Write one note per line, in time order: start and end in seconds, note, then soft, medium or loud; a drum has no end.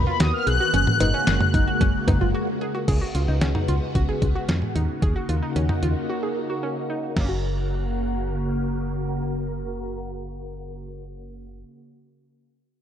0.00 0.70 D#3 medium
0.00 0.70 A#3 medium
0.00 0.72 B3 medium
0.00 0.70 F#4 medium
0.07 0.18 F4 medium
0.07 0.21 B5 medium
0.20 0.32 D#2 medium
0.20 0.42 F#4 medium
0.20 0.33 D#6 loud
0.20 snare loud
0.20 closed hi-hat medium
0.33 0.47 F6 loud
0.47 0.59 B1 medium
0.47 0.58 G#4 medium
0.47 2.30 F#6 loud
0.47 closed hi-hat medium
0.60 0.71 F#4 medium
0.74 0.86 F#1 loud
0.74 2.86 C#3 medium
0.74 2.86 G#3 medium
0.74 2.86 A#3 medium
0.74 0.96 C#4 loud
0.74 2.86 F#4 medium
0.74 closed hi-hat medium
0.87 mid tom loud
1.00 1.13 F#1 loud
1.00 1.11 D#4 medium
1.00 closed hi-hat medium
1.00 cowbell medium
1.14 1.25 C#4 medium
1.27 1.39 F#1 loud
1.27 1.49 C#4 medium
1.27 snare loud
1.27 closed hi-hat medium
1.41 mid tom medium
1.54 1.66 F#1 loud
1.54 1.65 D#4 medium
1.54 kick loud
1.54 closed hi-hat medium
1.67 1.78 F#4 medium
1.81 1.93 F#1 loud
1.81 2.03 C#4 medium
1.81 kick loud
1.81 closed hi-hat medium
2.08 2.20 F#1 loud
2.08 2.19 D#4 medium
2.08 kick medium
2.08 closed hi-hat medium
2.08 mid tom loud
2.08 cowbell medium
2.21 2.33 F#1 loud
2.21 2.32 F4 medium
2.34 2.56 F#4 medium
2.61 2.72 G#4 medium
2.75 2.86 F#4 medium
2.88 3.00 C#2 loud
2.88 4.74 C#3 medium
2.88 4.74 G#3 medium
2.88 4.74 B3 medium
2.88 4.74 F#4 medium
2.88 2.99 G#4 medium
2.88 kick loud
2.88 closed hi-hat medium
2.88 crash medium
3.01 3.12 F#4 medium
3.15 3.27 C#2 loud
3.15 3.26 F4 medium
3.15 closed hi-hat medium
3.28 3.40 C#2 loud
3.28 3.39 D#4 medium
3.41 3.54 C#2 loud
3.41 3.53 C#4 medium
3.41 snare loud
3.41 closed hi-hat medium
3.55 3.66 D#4 medium
3.55 mid tom medium
3.68 3.80 C#2 loud
3.68 3.90 F4 medium
3.68 closed hi-hat medium
3.95 4.07 C#2 loud
3.95 4.06 F#4 medium
3.95 kick medium
3.95 closed hi-hat medium
4.09 4.31 G#4 medium
4.22 4.34 C#2 loud
4.22 kick medium
4.22 closed hi-hat medium
4.35 4.46 F#4 medium
4.49 4.61 F2 medium
4.49 4.71 C#4 medium
4.49 snare loud
4.49 closed hi-hat medium
4.62 mid tom medium
4.76 4.88 D#2 medium
4.76 7.14 C#3 medium
4.76 7.14 A#3 medium
4.76 7.14 D#4 medium
4.76 4.98 D#4 medium
4.76 7.14 F#4 medium
4.76 closed hi-hat medium
5.02 5.14 D#2 loud
5.02 5.13 G#4 medium
5.02 kick loud
5.02 closed hi-hat medium
5.16 5.27 F#4 medium
5.29 5.41 D#2 medium
5.29 5.40 F4 medium
5.29 closed hi-hat medium
5.43 5.53 D#4 medium
5.56 5.68 D#2 loud
5.56 5.67 C#4 medium
5.56 closed hi-hat medium
5.69 5.80 D#4 medium
5.69 mid tom medium
5.83 5.95 D#2 loud
5.83 6.05 F4 medium
5.83 closed hi-hat medium
6.09 6.20 F#4 medium
6.23 6.45 G#4 medium
6.50 6.61 F#4 medium
6.63 6.85 C#4 medium
6.90 7.12 D#4 medium
7.17 11.64 F#1 loud
7.17 11.64 C#3 medium
7.17 11.63 F#3 medium
7.17 11.64 A#3 medium
7.17 11.67 A#3 medium
7.17 11.64 F#4 medium
7.17 11.64 A#4 medium
7.17 kick medium
7.17 snare medium
7.17 crash medium
7.25 11.71 C#4 medium
7.29 11.75 F#4 medium